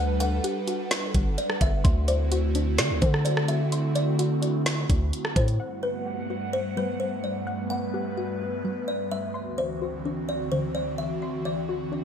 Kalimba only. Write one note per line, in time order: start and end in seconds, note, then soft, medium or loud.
0.20 1.34 F#5 medium
1.38 1.60 D5 medium
1.62 1.84 E5 medium
2.08 2.74 C5 medium
2.79 3.01 D5 medium
3.02 3.24 C5 medium
3.25 3.47 D5 medium
3.48 3.71 E5 medium
3.95 5.32 D5 medium
5.36 5.59 C5 medium
5.83 6.49 B4 medium
6.53 6.76 C5 medium
6.77 6.99 B4 medium
7.00 7.22 C5 medium
7.24 7.46 D5 medium
7.70 8.84 F#5 medium
8.88 9.10 D5 medium
9.11 9.34 E5 medium
9.58 10.24 C5 medium
10.29 10.51 D5 medium
10.52 10.74 C5 medium
10.75 10.97 D5 medium
10.98 11.21 E5 medium
11.45 12.04 D5 medium